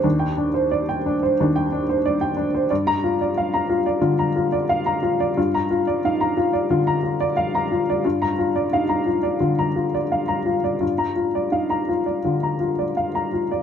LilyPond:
<<
  \new Staff \with { instrumentName = "Upright piano" } { \time 4/4 \key g \phrygian \tempo 4 = 89 << { r1 | r16 bes''8 r2. r16 | r1 | r1 |
r1 | } \\ { <d' c''>16 g''16 d'16 c''16 d''16 g''16 d'16 c''16 d'16 g''16 d'16 c''16 d''16 g''16 d'16 c''16 | d''8 f'16 d''16 f''16 bes''16 f'16 d''16 f'16 bes''16 f'16 d''16 f''16 bes''16 f'16 d''16 | f'16 bes''16 f'16 d''16 f''16 bes''16 f'16 d''16 f'16 bes''16 f'16 d''16 f''16 bes''16 f'16 d''16 | f'16 bes''16 f'16 d''16 f''16 bes''16 f'16 d''16 f'16 bes''16 f'16 d''16 f''16 bes''16 f'16 d''16 |
f'16 bes''16 f'16 d''16 f''16 bes''16 f'16 d''16 f'16 bes''16 f'16 d''16 f''16 bes''16 f'16 d''16 | } >> }
  \new Staff \with { instrumentName = "Upright piano" } { \clef bass \time 4/4 \key g \phrygian ees,2 ees,2 | g,2 d4 r4 | g,4 ees'8 r8 d4 r4 | g,4 ees'8 r8 d4 r4 |
g,4 ees'8 r8 d4 r4 | }
>>